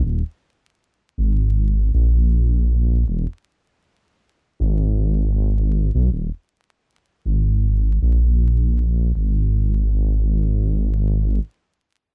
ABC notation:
X:1
M:4/4
L:1/16
Q:"Swing 16ths" 1/4=79
K:D#phr
V:1 name="Detuned saw bass" clef=bass
D,,, z4 z G,,,4 A,,,6 | E,,, z6 z G,,,6- G,,, B,,, | D,,, z4 z G,,,4 A,,,6 | G,,,12 z4 |]